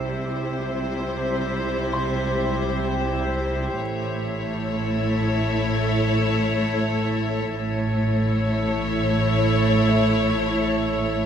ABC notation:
X:1
M:4/4
L:1/8
Q:1/4=64
K:Am
V:1 name="Grand piano"
z4 c'4- | c'2 z6 | z4 z e3 |]
V:2 name="Synth texture"
[Gce]8 | [A^ce]8 | [A^ce]8 |]
V:3 name="Violin section"
c8 | ^c8 | ^c8 |]
V:4 name="Viola section"
[G,E]8 | [A,E]8 | [A,E]8 |]
V:5 name="Cello section" clef=bass
C,8 | A,,8 | A,,8 |]
V:6 name="Double bass section" clef=bass
C,,8 | A,,,8 | A,,,8 |]